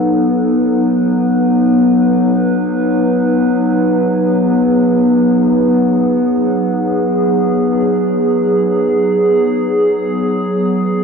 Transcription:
Already playing: F#3 B3 D#4 A4 B4
3.26 G#4
10.71 E3
10.81 C#4

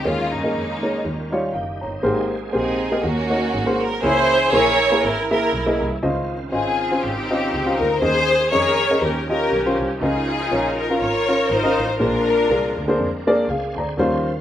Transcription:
0.04 D#2 D#3 G#3 A#3 C#4 D#4 F4 G#4 C#5
0.33 G2 G#3 A#3 D#4
0.44 A#3 D#4 G#4 D#5
0.54 F2
0.83 A#3 D#4 G#4 C#5
1.04 D#2 D#3 G3 C#4 F4
1.32 G3 D#4 F4 C#5
1.53 F#1 D#4 G4 F5
1.81 G1 C4 D#4 C#5 A#5
2.03 G#1 G#2 G#3 A#3 C4 G4 G#4 C5
2.53 A#1 A#3 C4 D#4 G4 G#4 C5
2.92 A#3 G4 G#4 D#5
3.02 D#2 D#3 A#3 C#4 F#4
3.30 A#3 D#4 F#4 C#5
3.52 G#1 G#2 F#3 A#3 C4 G#4
3.66 A#3 F#4 G#4 C5
3.81 A#4
4.03 C#2 C#3 E3 A#3 C#4 E4 G#4 C5 C#5
4.53 A#1 A#3 E4 G#4 A#4 C#5
4.92 A#3 E4 G#4 A#4
5.03 G#1 E4 A#4
5.31 A#3 E4 G#4 A#4 E5
5.53 B1
5.66 A#3 E4 G#4 D#5
5.81 C2
6.02 C#2 C#3 D#3 C4 C#4 E4 F4 C5 D#5
6.09 F4
6.52 G#1 C4 C#4 F4 G#4 C5 D#5
6.91 C#4 F4 C5 F5
7.02 G#1 C4 D#4 G4
7.30 C#4 F4 C5 D#5
7.53 C#2
7.66 C#4 F4 C5 F5
7.79 D2 A#4
8.00 D#2 D#3 A#3 C#4 G#4 A#4 C5 D#5
8.51 F2 C#4 G#4 A#4 C#5 D#5
8.91 C#4 G#4 A#4 D#5
9.01 D#2 D#3 F3 C#4 D#4 F4 G4 A#4
9.07 G4
9.28 C#4 F4 G4 A#4 D#5
9.51 B1
9.66 C#4 F4 G4 C5
9.79 C2
10.00 C#2 C#3 F3 C#4 D#4 F4 G#4 A4 A#4 D#5
10.07 A#4
10.51 A#1 C#4 F4 A#4 C#5
10.79 A#4
10.90 C#4 F4 A#4 F5
11.00 G#1 F4 A#4 C#5
11.29 C#4 F4 A#4 C#5
11.50 G#1 D#4 F4 C5
11.64 C#4 F4 A#4 D#5
11.78 A1
11.99 A#1 A#2 G#3 A#3 C4 D4 F4 G#4 A#4 C5
12.49 C2 A#3 D4 G#4 A#4
12.76 D2
12.88 A#3 D4 G#4 C5
12.98 F2
13.27 A#3 D4 G#4 D5
13.48 C#2 G#4 F5 G#5
13.76 D2 G#4 C5 D5 A#5
13.97 D#2 C#3 D#3 F#3 G3 C#4 F4 C5
14.04 F3

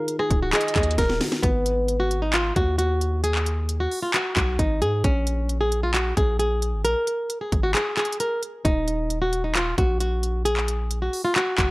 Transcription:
Already playing: D#3 D#4 F4 G#4 A#4
0.08 closed hi-hat
0.19 G#4, cross-stick
0.30 C#1, kick, closed hi-hat
0.43 F#4
0.53 G#4 D#5, clap, closed hi-hat
0.61 closed hi-hat
0.68 closed hi-hat
0.76 D#2 G#4, kick, clap, closed hi-hat
0.83 closed hi-hat
0.91 closed hi-hat
0.98 D#1 A#4, kick, snare, closed hi-hat
1.09 snare
1.19 D#3 D#4 F4, snare, open hi-hat
1.24 F#4
1.32 snare
1.43 G#1 B3, kick, closed hi-hat
1.66 closed hi-hat
1.88 closed hi-hat
2.00 F#4
2.11 closed hi-hat
2.22 D#4
2.34 F4, clap, closed hi-hat
2.56 D#2 F#4, kick, closed hi-hat
2.78 F#4, closed hi-hat
3.01 closed hi-hat
3.24 G#4, closed hi-hat
3.35 clap
3.46 closed hi-hat
3.69 closed hi-hat
3.80 F#4
3.91 open hi-hat
4.03 F4
4.14 F#4, clap, closed hi-hat
4.36 B1 F#4, kick, clap, closed hi-hat
4.59 G#1 D#4, kick, closed hi-hat
4.82 G#2 G#4, closed hi-hat
5.04 A#1 C#4, kick, closed hi-hat
5.27 closed hi-hat
5.49 closed hi-hat
5.61 G#4
5.72 closed hi-hat
5.83 F4
5.94 F#4, clap, closed hi-hat
6.17 A#1 G#4, kick, closed hi-hat
6.39 G#4, closed hi-hat
6.62 closed hi-hat
6.73 G#1
6.85 A#1 A#4, closed hi-hat
7.07 closed hi-hat
7.30 closed hi-hat
7.41 G#4
7.52 G#1, kick, closed hi-hat
7.63 F#4
7.75 G#4, clap, closed hi-hat
7.97 G#4, clap, closed hi-hat
8.05 closed hi-hat
8.12 closed hi-hat
8.20 A#4, closed hi-hat
8.43 closed hi-hat
8.65 D#1 D#4, kick, closed hi-hat
8.88 closed hi-hat
9.10 closed hi-hat
9.22 F#4
9.33 closed hi-hat
9.44 D#4
9.55 F4, clap, closed hi-hat
9.78 A#1 F#4, kick, closed hi-hat
10.00 F#4, closed hi-hat
10.23 closed hi-hat
10.45 G#4, closed hi-hat
10.57 clap
10.68 closed hi-hat
10.91 closed hi-hat
11.02 F#4
11.13 open hi-hat
11.25 F4
11.36 F#4, clap, closed hi-hat
11.58 F#1 F#4, kick, clap, closed hi-hat

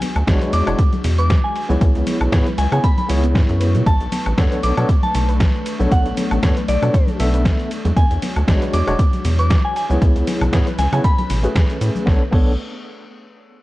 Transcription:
Already playing: G#3 D4 F#4 C#6
0.01 B3, open hi-hat, ride, high conga, cabasa
0.16 D2, closed hi-hat, cabasa, high woodblock
0.27 B1 G#3 B3 D4 F#4 C#5, kick, snare, closed hi-hat, ride, cabasa
0.41 B4, closed hi-hat, high conga, cabasa
0.53 E2 D6, open hi-hat, ride, cabasa
0.67 E1 G#3 D4 E4 F#4 C#5, closed hi-hat, cabasa, high woodblock
0.79 B3, kick, closed hi-hat, ride, cabasa
0.93 closed hi-hat, high conga, cabasa
1.04 E2 B2, open hi-hat, ride, cabasa
1.18 B4 D6, closed hi-hat, cabasa
1.30 kick, snare, closed hi-hat, ride, high conga, cabasa
1.44 G#5, cabasa
1.56 E4 B4 G#5, open hi-hat, ride, cabasa
1.69 C#2 G#3 B3 E4 G#4 C#5, high conga, cabasa
1.81 C#2 B3, kick, closed hi-hat, ride, cabasa
1.95 C#2, closed hi-hat, cabasa
2.07 B3, open hi-hat, ride, high conga, cabasa
2.21 B1, closed hi-hat, cabasa, high woodblock
2.32 G#2 B3 E4 G#4 C#5, kick, snare, closed hi-hat, ride, cabasa
2.47 B4, closed hi-hat, high conga, cabasa
2.58 C#2 G#5, open hi-hat, ride, cabasa
2.72 C#3 B3 E4 G#4 C#5 G#5, closed hi-hat, cabasa, high woodblock
2.84 B3 B5, kick, closed hi-hat, ride, cabasa
2.98 B5, closed hi-hat, high conga, cabasa
3.09 C#2 F#3 B3 E4 G#4 C#5, open hi-hat, ride, cabasa
3.24 B3, closed hi-hat, cabasa
3.35 G#2, kick, snare, closed hi-hat, ride, high conga, cabasa
3.49 F#2, closed hi-hat, cabasa
3.61 B4, open hi-hat, ride, cabasa
3.75 B2 F#3, closed hi-hat, high conga, cabasa
3.86 B1 A3 B3 D4 B4 A5, kick, closed hi-hat, ride, cabasa
4.01 B1, closed hi-hat, cabasa
4.12 B3, open hi-hat, ride, high conga, cabasa
4.26 A1, closed hi-hat, cabasa, high woodblock
4.37 F#2 B3 D4 A4 C#5, kick, snare, closed hi-hat, ride, cabasa
4.52 B4, closed hi-hat, high conga, cabasa
4.63 B1 D6, open hi-hat, ride, cabasa
4.77 B2 F#3 B3 D4 A4 C#5, closed hi-hat, cabasa, high woodblock
4.89 B3, kick, closed hi-hat, ride, cabasa
5.03 A5, closed hi-hat, high conga, cabasa
5.15 B1 B2 A5, open hi-hat, ride, cabasa
5.29 B4, closed hi-hat, cabasa
5.40 kick, snare, closed hi-hat, ride, high conga, cabasa
5.54 cabasa
5.66 open hi-hat, ride, cabasa
5.79 B1 A3 B3 D4 A4 C#5, high conga, cabasa
5.91 B1 B3 A4 F#5, kick, closed hi-hat, ride, cabasa
6.06 B1, closed hi-hat, cabasa
6.17 B3, open hi-hat, ride, high conga, cabasa
6.31 A1, closed hi-hat, cabasa, high woodblock
6.42 F#2 B3 D4 A4 C#5, kick, snare, closed hi-hat, ride, cabasa
6.57 B4, closed hi-hat, high conga, cabasa
6.68 B1 D5, open hi-hat, ride, cabasa
6.82 B2 F#3 B3 D4 A4 C#5, closed hi-hat, cabasa, high woodblock
6.94 B3, kick, closed hi-hat, ride, cabasa
7.07 closed hi-hat, high conga, cabasa
7.19 B1 B2 B3 D4 A4 E5, open hi-hat, ride, cabasa
7.34 B4, closed hi-hat, cabasa
7.45 kick, snare, closed hi-hat, ride, high conga, cabasa
7.60 closed hi-hat, cabasa
7.71 G#3 F#4 C#5, open hi-hat, ride, cabasa
7.85 E2 G#3, closed hi-hat, high conga, cabasa
7.97 E2 B3 G#5, kick, closed hi-hat, ride, cabasa
8.11 E2, closed hi-hat, cabasa
8.22 B3, open hi-hat, ride, high conga, cabasa
8.36 D2, closed hi-hat, cabasa, high woodblock
8.47 B1 G#3 B3 D4 F#4 C#5, kick, snare, closed hi-hat, ride, cabasa
8.62 B4, closed hi-hat, high conga, cabasa
8.74 E2 D6, open hi-hat, ride, cabasa
8.87 E1 F#3 G#3 D4 F#4 C#5, closed hi-hat, cabasa, high woodblock
8.99 B3, kick, closed hi-hat, ride, cabasa
9.13 closed hi-hat, high conga, cabasa
9.25 E2 B2, open hi-hat, ride, cabasa
9.39 B4 D6, closed hi-hat, cabasa
9.50 kick, snare, closed hi-hat, ride, high conga, cabasa
9.65 G#5, cabasa
9.76 C#4 E4 B4 G#5, open hi-hat, ride, cabasa
9.89 C#2 G#3 B3 E4 G#4 C#5, high conga, cabasa
10.02 C#2 B3, kick, closed hi-hat, ride, cabasa
10.16 C#2, closed hi-hat, cabasa
10.27 B3, open hi-hat, ride, high conga, cabasa
10.41 B1, closed hi-hat, low conga, cabasa, high woodblock
10.53 G#2 B3 E4 G#4 C#5, kick, snare, closed hi-hat, ride, cabasa
10.67 B4, closed hi-hat, high conga, cabasa
10.79 C#2 G#5, snare, open hi-hat, ride, cabasa
10.92 C#3 F#3 B3 E4 G#4 C#5 G#5, closed hi-hat, cabasa, high woodblock
11.04 A3 B3 G#4 B5, kick, closed hi-hat, ride, cabasa
11.18 B5, closed hi-hat, high conga, cabasa
11.30 A1 B2, open hi-hat, ride, cabasa
11.43 A3 C#4 F#4 G#4 B4, closed hi-hat, cabasa
11.55 E2, kick, snare, closed hi-hat, ride, high conga, cabasa
11.70 closed hi-hat, cabasa
11.81 A2, open hi-hat, ride, cabasa
11.95 high conga, cabasa
12.06 B1 B3 D4 A4 C#5, kick, snare
12.31 B1 B3 D4 A4 C#5, kick, crash

